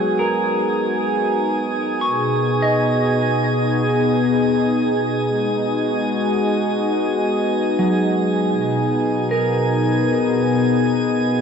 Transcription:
Already playing: clean electric guitar F#3, analog synth pad G#3 D#4 F#4, harmonium B3 G#4, synth texture G#4 G#5
0.19 clean electric guitar A#4
2.01 clean electric guitar C#6
2.06 analog synth pad B2
2.26 analog synth pad B3
2.62 clean electric guitar D#5
2.69 analog synth pad G#4
5.27 analog synth pad G#3
5.44 analog synth pad D#5
5.52 analog synth pad F#4
7.79 clean electric guitar F#3
8.53 analog synth pad B2, synth texture G#4 G#5
8.69 analog synth pad G#4
8.84 analog synth pad B3
9.31 clean electric guitar A#4

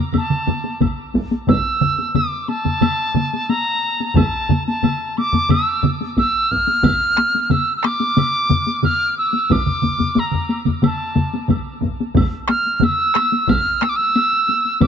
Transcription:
0.13 taiko low-mid, taiko mid, taiko high, high woodblock
0.17 piccolo A5
0.30 taiko low-mid, taiko mid
0.47 taiko low-mid, taiko mid, taiko high
0.64 taiko high
0.81 taiko, taiko low-mid, taiko mid, taiko high, high woodblock
1.14 taiko, taiko high
1.31 taiko high
1.47 piccolo E6, taiko, taiko low-mid, taiko mid, taiko high, high woodblock
1.81 taiko low-mid, taiko mid
1.99 taiko high
2.15 piccolo D6, taiko low-mid, taiko mid, taiko high, high woodblock
2.48 piccolo A5, taiko high, high woodblock
2.65 taiko low-mid, taiko mid, taiko high
2.81 taiko low-mid, taiko mid, taiko high, high woodblock
3.14 taiko low-mid, taiko mid, taiko high
3.33 taiko high
3.49 piccolo A#5, taiko high, high woodblock
4.00 taiko high
4.15 piccolo A5, taiko, taiko low-mid, taiko mid, taiko high, high woodblock
4.49 taiko low-mid, taiko mid, taiko high
4.67 piccolo A5, taiko high
4.83 taiko low-mid, taiko mid, taiko high, high woodblock
5.17 piccolo D6, taiko high, high woodblock
5.33 taiko low-mid, taiko mid, taiko high
5.49 piccolo E6, taiko low-mid, taiko mid, taiko high, high woodblock
5.83 taiko low-mid, taiko mid, taiko high
6.01 taiko high
6.17 piccolo E6, taiko, taiko high, high woodblock
6.51 piccolo F6, taiko
6.67 taiko high
6.83 taiko, taiko low-mid, taiko mid, taiko high, high woodblock
7.17 taiko rim, taiko high
7.35 taiko high
7.43 piccolo F6
7.50 piccolo E6, taiko low-mid, taiko mid, taiko high, high woodblock
7.77 piccolo E6
7.83 piccolo D6, taiko rim, taiko high, high woodblock
8.00 taiko high
8.17 taiko low-mid, taiko mid, taiko high, high woodblock
8.50 taiko low-mid, taiko mid, taiko high
8.67 taiko high
8.83 piccolo F6, taiko low-mid, taiko mid, taiko high, high woodblock
9.18 piccolo E6
9.33 taiko high
9.50 piccolo D6, taiko, taiko low-mid, taiko mid, taiko high, high woodblock
9.66 taiko low-mid, taiko mid
9.82 taiko low-mid, taiko mid, taiko high
9.99 taiko low-mid, taiko mid, taiko high
10.15 piccolo A#5, taiko low-mid, taiko mid, taiko high, high woodblock
10.32 taiko low-mid, taiko mid
10.50 taiko high, high woodblock
10.65 taiko low-mid, taiko mid, taiko high
10.82 piccolo A5, taiko low-mid, taiko mid, taiko high, high woodblock
11.15 taiko low-mid, taiko mid, taiko high
11.34 taiko high
11.48 taiko, taiko low-mid, taiko mid, taiko high, high woodblock
11.81 taiko, taiko low-mid, taiko mid, taiko high
12.00 taiko high
12.14 taiko, taiko low-mid, taiko mid, taiko high, high woodblock
12.32 taiko high
12.48 piccolo F6, taiko rim, taiko high
12.67 taiko high
12.76 piccolo F6
12.81 piccolo E6, taiko low-mid, taiko mid, taiko high, high woodblock
12.98 taiko high
13.15 taiko rim, taiko high, high woodblock
13.32 taiko high
13.48 piccolo F6, taiko, taiko low-mid, taiko mid, taiko high, high woodblock
13.65 taiko high
13.81 piccolo E6, taiko rim, taiko high
13.89 piccolo D6
13.96 piccolo E6, taiko high
14.16 taiko high, high woodblock
14.32 taiko high
14.49 taiko high
14.65 taiko high
14.81 piccolo D6, taiko, taiko low-mid, taiko mid, taiko high, high woodblock

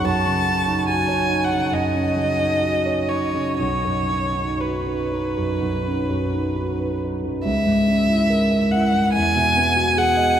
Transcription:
0.04 grand piano F#2, violin A5
0.26 grand piano C#3
0.67 grand piano D#4
0.88 grand piano F#4, violin G#5
1.07 grand piano C#5
1.29 grand piano D#4
1.44 violin F#5
1.51 grand piano C#3
1.72 grand piano F#2, violin D#5
1.94 grand piano C#4
2.16 grand piano C#3
2.40 grand piano D#4
2.62 grand piano F#4
2.85 grand piano C#5
3.09 grand piano D#4, violin C#5
3.33 grand piano C#3
3.58 grand piano B1, violin C#5
3.85 grand piano F#2
4.09 grand piano C#4
4.35 grand piano D#4
4.60 grand piano F#4, violin B4
4.86 grand piano B4
5.12 grand piano D#4
5.37 grand piano F#2
5.61 grand piano B1
5.85 grand piano C#4
6.09 grand piano F#2
6.33 grand piano D#4
6.55 grand piano F#4
6.79 grand piano B4
7.03 grand piano D#4
7.24 grand piano F#2
7.44 grand piano C#2, violin E5
7.66 grand piano G#2
7.87 grand piano C#4
8.07 grand piano E4
8.29 grand piano A#4
8.50 grand piano E5
8.71 grand piano E4, violin F#5
8.93 grand piano G#2
9.13 grand piano E2, violin G#5
9.35 grand piano B2
9.56 grand piano B3
9.76 grand piano F#4
9.97 grand piano G#4, violin F#5
10.17 grand piano D#5

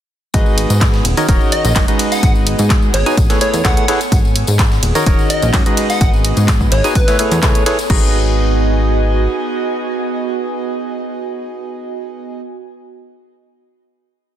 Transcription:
0.34 analog synth bass G#1, synth stab G#3 D#4 F#4 G#4 B4 D#5, analog synth pad B3, kick, closed hi-hat, tambourine
0.44 analog synth pad G#4, tambourine
0.58 open hi-hat, ride, tambourine
0.66 analog synth bass G#2, analog synth pad D#5 F#5, closed hi-hat, tambourine
0.81 kick, snare, clap, closed hi-hat, tambourine
0.93 snare, tambourine
1.05 analog synth bass D#1, analog synth pad C#4, open hi-hat, ride, tambourine
1.17 synth stab D#3 D#4 F#4 A#4 C#5 D#5, analog synth pad A#5, closed hi-hat, tambourine
1.28 analog synth bass D#1, synth stab D#3 D#4 F#4 A#4 C#5 D#5, kick, closed hi-hat, tambourine
1.41 tambourine
1.52 digital synth lead D#5, open hi-hat, ride, tambourine
1.65 analog synth bass A#1, closed hi-hat, tambourine
1.76 analog synth bass F#1, synth stab G#3 D#4 F#4 A#4 C#5 D#5, kick, snare, clap, closed hi-hat, open hi-hat
1.88 synth stab G#3 D#4 F#4 G#4 B4 D#5, closed hi-hat, tambourine
1.99 analog synth pad B3, open hi-hat, ride, tambourine
2.12 analog synth pad G#4, digital synth lead F#5, snare, closed hi-hat, tambourine
2.23 analog synth bass G#1, kick, closed hi-hat, tambourine
2.35 tambourine
2.47 open hi-hat, ride, tambourine
2.59 analog synth bass G#2, closed hi-hat, tambourine
2.70 kick, snare, clap, closed hi-hat, tambourine
2.82 tambourine
2.94 analog synth bass G#1, digital synth lead C#5, clap, open hi-hat, ride, tambourine
3.06 synth stab D#4 F#4 G#4 B4 G#5, closed hi-hat, tambourine
3.17 analog synth bass A1, kick, closed hi-hat, tambourine
3.21 analog synth pad A4
3.30 synth stab A3 E4 G#4 A4 B4 C#5, snare, open hi-hat, tambourine
3.41 synth stab A3 E4 G#4 A4 B4 C#5, digital synth lead C#5, open hi-hat, ride, tambourine
3.54 analog synth bass E2, closed hi-hat, tambourine
3.60 analog synth pad C#5 G#5
3.65 analog synth bass C#2, synth stab A3 E4 G#4 A4 B4 C#5, digital synth lead F#5, kick, snare, clap, closed hi-hat, tambourine
3.77 digital synth lead F#5, closed hi-hat, tambourine
3.88 synth stab E4 G#4 A4 B4 C#5, snare, open hi-hat, ride, tambourine
4.01 closed hi-hat, tambourine
4.12 analog synth bass G#1, kick, closed hi-hat, tambourine
4.25 tambourine
4.33 analog synth pad D#5, open hi-hat, ride, tambourine
4.39 analog synth pad G#4
4.44 analog synth bass G#2, analog synth pad F#5, closed hi-hat, tambourine
4.59 kick, snare, clap, closed hi-hat, tambourine
4.72 snare, tambourine
4.83 analog synth bass D#1, analog synth pad C#4, open hi-hat, ride, tambourine
4.95 synth stab D#3 D#4 F#4 A#4 C#5 D#5, closed hi-hat, tambourine
5.06 analog synth bass D#1, synth stab D#4 F#4 A#4 C#5 D#5, kick, closed hi-hat, tambourine
5.16 analog synth pad A#5, tambourine
5.30 digital synth lead D#5, open hi-hat, ride, tambourine
5.42 analog synth bass A#1, closed hi-hat, tambourine
5.54 synth stab G#3 D#4 F#4 A#4 C#5 D#5, kick, snare, clap, closed hi-hat, open hi-hat, tambourine
5.66 synth stab G#3 D#4 F#4 G#4 B4 D#5, closed hi-hat, tambourine
5.77 analog synth pad B3, open hi-hat, ride, tambourine
5.90 digital synth lead F#5, snare, closed hi-hat, tambourine
5.99 analog synth bass G#1, analog synth pad G#4, kick, closed hi-hat, tambourine
6.14 tambourine
6.24 open hi-hat, ride, tambourine
6.37 analog synth bass G#2, closed hi-hat, tambourine
6.48 kick, snare, clap, closed hi-hat, tambourine
6.61 kick, tambourine
6.72 analog synth bass G#1, digital synth lead C#5, clap, open hi-hat, ride
6.84 synth stab D#4 F#4 G#4 B4 G#5, closed hi-hat, tambourine
6.95 analog synth bass A1, digital synth lead B4, kick, closed hi-hat, tambourine
7.08 synth stab A3 E4 G#4 A4 B4 C#5, snare, open hi-hat, tambourine
7.14 analog synth pad C#5
7.19 synth stab A3 E4 G#4 A4 B4 C#5, open hi-hat, ride, tambourine
7.27 analog synth pad A4
7.31 analog synth bass E2, closed hi-hat, tambourine
7.38 analog synth pad G#5
7.43 synth stab A3 E4 G#4 A4 B4 C#5, kick, snare, clap, closed hi-hat, tambourine
7.55 closed hi-hat, tambourine
7.66 synth stab E4 G#4 A4 B4 C#5, snare, open hi-hat, ride, tambourine
7.79 closed hi-hat, tambourine
7.90 analog synth bass G#1, analog synth pad B3, synth stab D#4 F#4 G#4 B4 D#5, kick, crash
7.97 analog synth pad F#4
8.05 analog synth pad D#5
8.11 analog synth pad G#5

